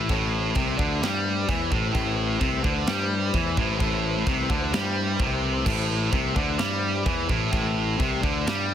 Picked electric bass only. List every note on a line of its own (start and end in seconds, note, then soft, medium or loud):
0.09 0.53 A1 loud
0.55 0.77 C2 loud
0.79 1.00 D2 loud
1.01 1.45 G2 medium
1.48 1.70 E2 loud
1.71 1.93 A1 loud
1.95 2.38 A1 loud
2.41 2.63 C2 loud
2.64 2.86 D2 loud
2.87 3.30 G2 loud
3.34 3.56 E2 loud
3.57 3.79 A1 loud
3.80 4.23 A1 loud
4.27 4.48 C2 loud
4.50 4.72 D2 loud
4.72 5.16 G2 medium
5.19 5.63 C2 medium
5.66 6.09 A1 loud
6.12 6.34 C2 loud
6.36 6.58 D2 medium
6.59 7.03 G2 medium
7.06 7.28 E2 loud
7.29 7.51 A1 loud
7.53 7.96 A1 loud
7.99 8.21 C2 loud
8.23 8.45 D2 loud
8.47 8.74 G2 medium